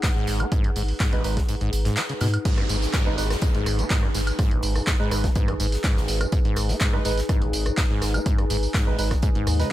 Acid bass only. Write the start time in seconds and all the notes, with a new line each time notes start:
0.03 G#2
0.16 G#2
0.40 B3
0.52 G#2
0.64 F#2
0.76 G#2
1.00 G#2
1.13 G#1
1.37 G#2
1.49 G#2
1.61 G#2
1.85 G#2
1.97 G#3
2.10 C#3
2.21 B2
2.45 G#2
2.58 F#2
2.70 G#2
2.94 G#2
3.06 G#1
3.31 G#2
3.42 G#2
3.55 G#2
3.79 B3
3.90 G#2
4.03 F#2
4.15 G#2
4.39 G#2
4.51 G#1
4.76 G#2
4.87 G#2
5.00 G#2
5.24 B3
5.36 G#2
5.48 F#2
5.60 G#2
5.84 G#2
5.96 G#1
6.21 G#2
6.32 G#2
6.45 G#2
6.69 B3
6.81 G#2
6.93 F#2
7.05 G#2
7.29 G#2
7.42 G#1
7.66 G#2
7.78 G#2
7.90 G#2
8.14 B3
8.26 G#2
8.39 F#2
8.50 G#2
8.74 G#2
8.87 G#1
9.11 G#2
9.23 G#2
9.35 G#2
9.60 C#3